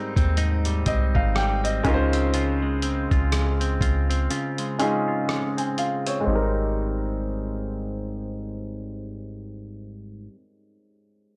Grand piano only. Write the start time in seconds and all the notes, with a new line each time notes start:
Already playing: G#3 C4 D#4 G4 A#4
0.87 D#5
1.16 F5
1.36 G5
1.65 D#5
1.83 G#3 C#4 D#4 F4 A#4
1.94 C5
4.79 G#3 C#4 D#4 F4 G#4
5.58 G#5
5.79 F5
6.07 C#5
6.20 G#3 C4
6.28 D#4 G4
6.35 A#4